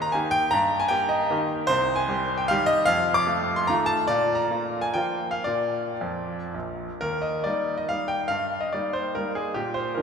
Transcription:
Already playing: D#2 A#3 G4 D#5 C6
0.02 A#5
0.12 D#3 A#3 G4 G#5
0.31 G5
0.51 G2 A#5
0.80 G#5
0.88 A#3 G4 G5
1.09 D#5
1.30 D#3 A#3 G4
1.67 C2 C5
1.96 G#5
2.09 G3 G4
2.38 G5
2.48 D#3 G3 G4 F5
2.66 D#5
2.86 F2 F5
3.14 D6
3.27 A3 F4
3.56 C6
3.67 D#3 A3 F4 A#5
3.86 A5
4.08 A#2 D5
4.35 A#5
4.50 A#3 F4
4.82 G#5
4.94 F3 A#3 F4 G5
5.31 F5
5.44 A#2 A#3 F4 D5
6.01 F2
6.54 A#1
7.01 D#2 A#4
7.22 D#5
7.44 G3 A#3 D#4 D5
7.78 D#5
7.89 G3 A#3 D#4 F5
8.08 G5
8.28 G2 F5
8.61 D#5
8.73 G3 A#3 D#4 D5
8.93 C5
9.15 G3 A#3 D#4 A#4
9.35 G#4
9.54 A#2 G4
9.74 C5
9.95 F3 A#3 D4 A#4

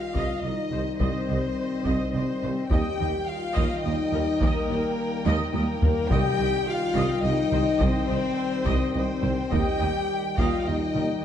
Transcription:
Already playing: D#3 G3 F4 D#5 F5
0.14 C2 D#5, taiko
0.43 C2 D#4 D#5
0.71 C2 C5
0.99 C2 C4 C5 D#5, taiko
1.29 C2 D#5
1.85 C2 D#5, taiko
2.13 C2 C4 C5 D#5
2.43 C2 C5
2.70 D#2 D#3 G4 D#5 G5, taiko
2.74 G3
2.99 D#2 D#5
3.27 F4 F5
3.54 D#2 D#5, taiko
3.83 D#2 D#4 D#5
4.12 D#2 A#4
4.41 D#2 A#3 A#4 D#5, taiko
4.69 D#2 D#5
5.26 D#2 D#5, taiko high
5.53 D#2 A#3 A#4 D#5, taiko high
5.82 D#2 A#4, taiko low
6.10 C2 C3 D#3 G3 G4 D#5 G5, taiko
6.38 C2 D#5
6.66 F4 F5
6.94 C2 D#5, taiko
7.23 C2 D#4 D#5
7.51 C2 C5, taiko mid
7.79 C2 C4 C5 D#5, taiko
8.08 C2 D#5
8.65 C2 D#5, taiko
8.93 C2 C4 C5 D#5
9.23 C2 C5, taiko mid
9.51 D#2 G4 D#5 G5, taiko
9.56 D#3 G3
9.80 D#2 D#5
10.37 D#2 F4 D#5 F5, taiko
10.66 D#2 D#4 D#5
10.94 D#2 A#4, taiko mid

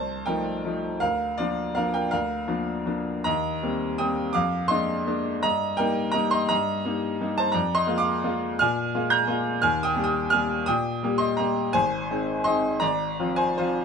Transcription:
Already playing: C2 C5 A5
0.26 F3 A3 D#4 A#4 G5
0.65 F3 A3 D#4
1.00 D2 A#4 F5
1.38 F3 A#3 D4 F4 D5
1.75 F3 A#3 D4 A#4 F5
1.94 A#4 G5
2.11 D2 A#4 F5
2.48 F3 A#3 D4
2.86 F3 A#3 D4
3.24 D#2 D#5 A#5
3.63 G3 A#3 C4
3.98 G3 A#3 C4 G5 D#6
4.33 F2 F5 D6
4.68 G#3 A#3 D4 D#5 C6
5.07 G#3 A#3 D4
5.43 G2 D#5 A#5
5.77 G3 A#3 D#4 A#4 G5
6.12 G3 A#3 D#4 D#5 A#5
6.31 D#5 C6
6.49 G2 D#5 A#5
6.85 G3 A#3 D#4
7.21 G3 A#3 D#4
7.38 C5 A5
7.52 F2 D5 A#5
7.75 D#5 C6
7.87 G#3 A#3 F4
7.98 F5 D6
8.24 G#3 A#3 F4
8.59 A#2 G#5 F6
8.95 G#3 A#3 F4
9.10 A#5 G6
9.28 G#3 A#3 F4
9.62 D#2 G#5 F6
9.83 G5 D#6
9.95 G3 A#3 G4
10.04 G5 D#6
10.30 G3 A#3 G4 G#5 F6
10.66 A#2 G5 D#6
11.03 G3 A#3 G4
11.18 D#5 C6
11.37 G3 A#3 G4 D#5 A#5
11.73 G#1 C5 G#5
12.11 G#3 C4 D#4
12.44 G#3 C4 D#4 D#5 C6
12.80 G#1 D5 A#5
13.20 F3 C4 F4
13.36 C5 G#5
13.58 F3 C4 F4 C5

